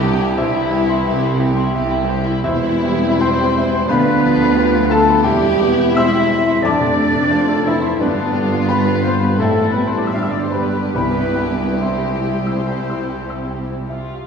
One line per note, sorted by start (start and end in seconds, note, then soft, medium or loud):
0.00 0.29 C2 medium
0.00 2.40 C2 medium
0.00 0.13 G2 medium
0.00 0.29 C3 medium
0.00 0.20 E3 soft
0.00 0.38 G3 medium
0.00 0.30 G3 medium
0.00 0.20 C4 medium
0.00 0.39 D4 medium
0.00 0.34 G4 medium
0.00 0.36 G4 medium
0.00 0.38 G4 medium
0.00 0.40 G4 medium
0.00 0.20 G4 medium
0.00 0.34 E5 medium
0.00 0.34 G5 medium
0.19 0.37 G3 medium
0.19 0.37 E4 soft
0.19 0.37 E4 medium
0.19 0.37 E4 soft
0.37 0.98 C2 medium
0.37 0.98 C3 medium
0.37 0.53 E3 medium
0.37 1.75 E3 medium
0.37 0.53 C4 medium
0.37 0.72 C4 medium
0.37 1.75 E4 medium
0.37 1.71 E4 medium
0.37 1.75 E4 medium
0.37 0.53 G4 medium
0.37 0.65 C5 medium
0.37 0.71 E5 medium
0.53 0.71 G3 soft
0.53 0.71 E4 medium
0.53 0.82 G4 medium
0.70 0.89 E3 medium
0.70 0.89 C4 medium
0.70 1.07 E4 medium
0.70 0.88 G4 medium
0.70 1.00 E5 medium
0.87 1.05 G3 soft
0.87 1.05 E4 medium
0.87 1.06 E4 soft
0.87 1.17 C6 medium
1.05 1.66 C2 medium
1.05 1.67 C2 medium
1.05 1.67 C3 medium
1.05 1.22 E3 medium
1.05 1.21 C4 medium
1.05 1.39 G4 medium
1.05 1.22 G4 medium
1.05 1.34 E5 medium
1.20 1.39 G3 medium
1.20 1.39 E4 medium
1.20 1.51 C6 medium
1.25 1.41 E4 medium
1.37 1.56 E3 medium
1.37 1.55 C4 medium
1.37 1.57 G4 medium
1.37 2.14 G4 medium
1.37 1.67 E5 medium
1.52 1.72 G3 medium
1.52 1.72 E4 medium
1.57 1.74 E4 medium
1.57 1.84 C6 medium
1.70 1.88 E3 medium
1.70 1.88 C4 medium
1.74 2.35 C2 medium
1.74 2.36 C3 medium
1.74 1.90 G4 medium
1.74 2.02 E5 medium
1.86 2.06 G3 medium
1.86 2.06 E4 medium
1.91 2.09 E4 medium
1.91 2.19 G4 medium
2.03 2.23 E3 medium
2.03 2.24 C4 medium
2.08 2.26 G4 medium
2.08 2.37 C5 medium
2.22 2.41 G3 medium
2.22 2.42 E4 medium
2.26 2.43 E4 medium
2.41 3.84 E1 medium
2.41 3.91 E1 medium
2.41 3.84 E2 medium
2.41 3.16 E3 medium
2.41 3.83 G3 medium
2.41 3.83 C4 medium
2.41 3.84 E4 medium
2.41 3.16 E4 medium
2.41 3.03 E4 medium
2.41 3.16 E5 medium
2.45 2.86 E4 medium
2.45 3.22 E4 medium
2.45 3.17 E4 medium
2.45 3.17 C5 medium
2.63 2.94 E3 medium
2.84 3.14 G3 medium
2.84 3.88 C4 medium
3.04 3.32 E4 medium
3.18 3.87 C4 medium
3.18 3.87 C5 medium
3.18 3.90 C5 medium
3.18 3.85 C5 medium
3.18 3.85 G5 medium
3.18 3.74 C6 medium
3.22 3.89 C5 medium
3.41 3.66 G4 medium
3.58 3.83 E5 medium
3.75 3.90 C6 medium
3.86 5.23 D2 medium
3.86 5.24 D2 medium
3.86 5.19 F3 medium
3.86 5.18 B3 medium
3.86 4.89 B3 medium
3.86 4.57 D4 medium
3.86 5.20 F4 medium
3.86 4.88 B4 loud
3.86 4.89 B4 medium
3.86 4.91 B4 medium
3.86 4.86 F5 medium
3.86 4.85 B5 medium
3.91 5.20 D2 medium
3.91 4.55 B4 medium
4.06 4.32 D3 medium
4.24 4.49 F3 medium
4.41 4.67 F4 medium
4.56 4.91 G4 medium
4.56 4.83 B4 medium
4.73 5.00 F4 medium
4.88 5.23 F4 medium
4.88 5.23 A4 medium
4.88 5.22 A4 medium
4.88 5.22 A5 medium
4.92 5.25 A3 medium
4.92 5.18 F5 medium
5.09 5.25 B5 medium
5.23 6.62 E1 medium
5.23 6.63 E1 medium
5.23 6.63 E2 medium
5.23 6.60 E2 medium
5.23 6.59 G3 medium
5.23 5.96 G3 medium
5.23 7.96 C4 medium
5.23 6.59 E4 medium
5.23 5.63 E4 medium
5.23 5.95 G4 medium
5.23 5.71 G4 medium
5.23 5.94 G4 medium
5.23 5.93 G4 medium
5.23 5.93 E5 medium
5.23 5.92 G5 medium
5.44 5.72 E3 medium
5.60 5.89 G3 medium
5.60 5.99 B3 medium
5.80 6.07 E4 medium
5.94 6.65 C4 medium
5.94 6.23 C5 medium
5.94 6.61 E5 medium
5.94 6.64 E5 medium
5.94 6.62 E5 medium
5.94 6.29 E5 medium
5.94 6.45 C6 medium
5.94 6.59 E6 loud
5.98 6.63 E4 medium
6.14 6.40 G4 medium
6.30 6.57 E5 medium
6.47 6.63 C6 medium
6.62 7.83 F1 medium
6.62 7.98 F1 medium
6.62 7.96 F2 medium
6.62 7.97 F2 medium
6.62 7.95 A3 medium
6.62 7.33 D4 medium
6.62 7.96 D4 medium
6.62 7.68 D5 medium
6.62 7.64 D5 medium
6.62 7.66 D5 loud
6.62 7.63 D6 medium
6.66 7.67 D4 medium
6.66 7.63 D5 medium
6.66 7.63 A5 medium
6.80 7.07 C3 medium
6.97 7.24 A3 medium
7.13 7.41 D4 medium
7.30 7.69 F4 medium
7.30 7.58 C5 medium
7.49 7.76 A4 medium
7.64 7.99 E3 medium
7.64 8.01 C4 medium
7.64 7.99 E4 medium
7.64 8.00 E4 medium
7.64 7.99 E4 medium
7.64 8.01 E4 medium
7.64 7.93 D5 medium
7.64 7.98 E5 medium
7.81 7.99 C6 medium
7.99 9.36 G1 medium
7.99 9.40 G1 medium
7.99 9.36 G2 medium
7.99 9.35 G2 medium
7.99 8.68 D3 medium
7.99 13.84 G3 medium
7.99 9.35 B3 medium
7.99 9.09 B3 medium
7.99 8.68 D4 medium
7.99 8.67 D4 medium
7.99 8.69 D4 medium
7.99 8.65 D4 medium
7.99 9.35 F4 medium
7.99 8.64 B4 medium
7.99 8.64 D5 medium
8.18 8.44 D3 medium
8.32 8.60 G3 medium
8.52 8.79 F4 medium
8.66 9.02 B3 medium
8.66 9.05 B4 medium
8.66 9.03 B4 medium
8.66 8.97 B4 medium
8.66 9.01 G5 medium
8.66 9.01 B5 medium
8.86 9.14 G4 medium
9.02 9.20 C4 medium
9.02 9.21 C5 medium
9.02 9.20 C5 medium
9.02 9.22 C5 medium
9.02 9.21 C5 soft
9.02 9.33 F5 medium
9.02 9.20 C6 medium
9.19 9.38 B3 medium
9.19 9.39 B4 medium
9.19 9.40 B4 medium
9.19 9.39 B5 medium
9.24 9.39 B4 medium
9.37 10.13 A1 medium
9.37 10.11 A1 medium
9.37 10.11 A2 medium
9.37 10.13 A2 medium
9.37 9.72 A3 medium
9.37 10.08 C4 medium
9.37 10.17 C4 medium
9.37 10.09 E4 medium
9.37 9.73 A4 medium
9.37 9.72 A4 medium
9.37 9.73 A4 medium
9.37 9.70 A5 medium
9.41 9.71 A4 medium
9.41 9.71 E5 medium
9.56 9.86 E3 medium
9.71 9.86 B3 medium
9.71 9.86 B4 medium
9.71 9.88 B4 medium
9.71 9.86 B4 medium
9.71 9.86 B4 soft
9.71 9.86 B5 medium
9.76 10.06 G3 soft
9.86 9.97 C4 soft
9.86 9.97 C5 medium
9.86 9.96 C5 soft
9.86 9.97 C5 soft
9.86 9.97 C6 medium
9.96 10.07 D4 soft
9.96 10.14 E4 soft
9.96 10.07 D5 soft
9.96 10.06 D5 soft
9.96 10.06 D6 medium
10.04 10.13 E4 medium
10.04 10.13 E5 soft
10.04 10.15 E5 medium
10.04 10.14 E5 soft
10.04 10.14 E6 medium
10.12 10.97 G1 medium
10.12 10.93 G1 medium
10.12 10.93 G2 medium
10.12 10.92 G2 medium
10.12 10.90 D4 medium
10.12 10.97 D4 medium
10.12 10.21 F4 soft
10.12 14.03 G4 medium
10.12 10.21 F5 soft
10.12 10.23 F5 medium
10.12 10.22 F5 soft
10.12 10.22 F6 medium
10.21 10.31 E4 soft
10.21 10.31 E5 soft
10.21 10.31 E6 medium
10.29 10.64 D3 soft
10.29 10.42 D4 soft
10.29 10.41 D5 medium
10.29 10.41 D5 soft
10.29 10.41 D6 medium
10.40 10.53 C4 soft
10.40 10.53 C5 soft
10.40 10.52 C5 soft
10.40 10.54 C5 soft
10.40 10.52 C6 medium
10.51 10.86 G3 soft
10.51 10.93 B3 medium
10.51 10.81 B4 medium
10.51 10.92 B4 medium
10.51 10.93 B4 medium
10.51 10.91 B5 medium
10.73 10.94 G4 soft
10.93 14.26 C2 medium
10.93 14.07 C2 medium
10.93 14.07 C2 soft
10.93 14.07 C3 medium
10.93 12.19 C3 medium
10.93 11.78 B3 medium
10.93 13.84 E4 medium
10.93 13.89 E4 medium
10.93 11.78 B4 medium
10.93 11.49 B4 medium
10.93 11.78 B4 medium
10.93 11.77 B5 medium
10.98 11.78 B4 medium
10.98 11.78 G5 medium
11.18 11.51 G2 soft
11.40 11.73 G3 soft
11.59 11.93 G4 soft
11.81 13.89 C4 soft
11.81 13.84 C5 soft
11.81 13.89 C5 soft
11.81 13.89 C5 medium
11.81 13.86 C5 soft
11.81 12.15 E5 soft
11.81 12.25 G5 soft
11.81 13.85 C6 medium
12.05 12.37 G4 soft
12.26 12.58 G5 soft
12.47 12.79 E6 soft
12.68 13.00 G5 soft
12.90 13.21 E6 soft
13.09 13.40 G5 soft
13.30 13.61 E6 soft
13.51 13.82 G5 soft
13.70 14.02 G4 soft
13.89 14.27 F4 medium
13.89 14.22 E5 soft
14.09 14.27 G4 soft